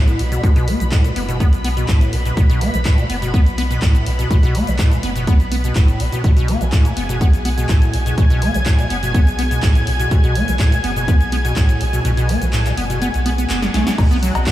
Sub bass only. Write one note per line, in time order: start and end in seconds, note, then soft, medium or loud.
0.00 0.14 B1 medium
0.19 0.38 B1 medium
0.44 0.76 B1 medium
0.80 1.12 B1 medium
1.16 1.48 F#1 medium
1.53 1.84 B1 medium
1.89 2.08 B1 medium
2.13 2.32 B1 medium
2.37 2.69 B1 loud
2.74 3.05 B1 medium
3.10 3.42 F#1 medium
3.46 3.78 B1 medium
3.82 4.01 B1 medium
4.06 4.25 B1 medium
4.31 4.63 B1 loud
4.67 4.99 B1 medium
5.03 5.35 F#1 medium
5.40 5.72 B1 medium
5.76 5.95 F#1 loud
6.00 6.10 B1 medium
6.24 6.56 B1 loud
6.61 6.93 B1 medium
6.97 7.29 F#1 medium
7.33 7.65 B1 medium
7.69 7.88 B1 medium
7.94 8.12 B1 medium
8.18 8.50 B1 loud
8.54 8.86 B1 medium
8.90 9.23 F#1 medium
9.27 9.59 B1 medium
9.63 9.82 B1 medium
9.87 10.06 B1 medium
10.11 10.43 B1 loud
10.48 10.80 B1 medium
10.84 11.16 F#1 medium
11.21 11.52 B1 medium
11.56 11.75 B1 medium
11.81 12.00 B1 medium
12.05 12.37 B1 loud
12.42 12.73 B1 medium
12.77 13.10 F#1 medium
13.14 13.46 B1 medium
13.50 13.69 F#1 loud
13.74 13.84 B1 medium
13.98 14.31 B1 loud
14.35 14.52 B1 medium